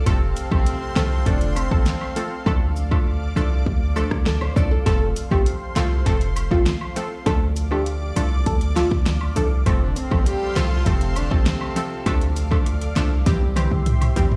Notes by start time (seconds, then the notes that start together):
Already playing: A4 F5
0.06 F1 C3 F3 A3 C4 A4 C5 C6, kick, closed hi-hat, high woodblock
0.36 closed hi-hat, cabasa
0.51 A1 C3 F3 A3 C4 A4, kick, high woodblock
0.66 closed hi-hat
0.96 C2 C3 F3 A3 C4 A4, snare, closed hi-hat, cabasa, high woodblock
1.26 F1 D3 F3 A3 C4 D4 A4, kick, closed hi-hat
1.41 closed hi-hat
1.56 C4, closed hi-hat, cabasa, high woodblock
1.71 A1 F3 A3 C4 A4, kick
1.86 snare, closed hi-hat
2.01 high woodblock
2.16 F3 A3 C4 A4, closed hi-hat, cabasa
2.46 D2 F3 A3 D4 A4 D5 D6, kick, high woodblock
2.76 cabasa
2.91 F3 A3 D4 A4, kick, high woodblock
3.36 C2 F3 A3 D4 A4, cabasa, high woodblock
3.66 D2, kick
3.96 F3 A3 D4 A4, cabasa, high woodblock
4.11 D2, kick, cross-stick
4.26 A4, snare
4.41 C5, high woodblock
4.56 C2 F3 A3 D4 A4 D5, kick, cabasa
4.71 A4
4.86 F1 F3 A3 C4 A4 C5 C6, kick, closed hi-hat, high woodblock
5.16 closed hi-hat, cabasa
5.31 A1 F3 A3 C4 G4 A4, kick, high woodblock
5.46 closed hi-hat
5.76 C2 F3 A3 C4 F4 A4, snare, closed hi-hat, cabasa, high woodblock
6.06 F1 F3 A3 C4 A4, kick, closed hi-hat
6.21 closed hi-hat
6.36 closed hi-hat, cabasa, high woodblock
6.51 A1 F3 A3 C4 F4 A4, kick
6.66 snare, closed hi-hat
6.81 high woodblock
6.96 F3 A3 C4 A4, closed hi-hat, cabasa
7.26 D2 F3 A3 D4 A4 D5 D6, kick, closed hi-hat, high woodblock
7.56 closed hi-hat, cabasa
7.71 F3 A3 D4 G4 A4, high woodblock
7.86 closed hi-hat
8.16 C2 F3 A3 D4 F4 A4, closed hi-hat, cabasa, high woodblock
8.46 D2 A4, kick, closed hi-hat
8.61 closed hi-hat
8.76 F3 A3 D4 F4 A4, snare, closed hi-hat, cabasa, high woodblock
8.91 D2, kick
9.06 snare, closed hi-hat
9.21 high woodblock
9.36 C2 F3 A3 D4 A4, closed hi-hat, cabasa
9.66 F1 F3 A3 C4 A4 C5 F5 C6, kick, closed hi-hat, high woodblock
9.81 D3 D4
9.96 C4, closed hi-hat, cabasa
10.11 A1 F3 A3 C4 A4, kick, high woodblock
10.26 G3 G4, closed hi-hat
10.56 C2 F3 A3 C4 F4 A4, snare, closed hi-hat, cabasa, high woodblock
10.71 F3 F4
10.86 F1 C3 F3 A3 C4 A4, kick, closed hi-hat
11.01 closed hi-hat
11.16 D3 D4, closed hi-hat, cabasa, high woodblock
11.31 A1 C3 F3 A3 C4 A4, kick
11.46 snare, closed hi-hat
11.61 high woodblock
11.76 F3 A3 C4 A4, closed hi-hat, cabasa
12.06 D2 F3 A3 D4 A4 D5 F5 D6, kick, closed hi-hat, high woodblock
12.21 closed hi-hat
12.36 closed hi-hat, cabasa
12.51 F3 A3 D4 A4, kick, high woodblock
12.66 closed hi-hat
12.81 closed hi-hat
12.96 C2 F3 A3 D4 A4, snare, closed hi-hat, cabasa, high woodblock
13.26 C2 E3 G3 C4 G4 C5 E5 C6, kick, closed hi-hat, high tom
13.41 high tom
13.56 E3 G3 C4 G4, closed hi-hat, mid tom, cabasa, high woodblock
13.71 C2, mid tom
13.86 closed hi-hat, mid tom
14.01 closed hi-hat, mid tom, high woodblock
14.16 A#1 E3 G3 C4 G4, closed hi-hat, floor tom, cabasa
14.31 floor tom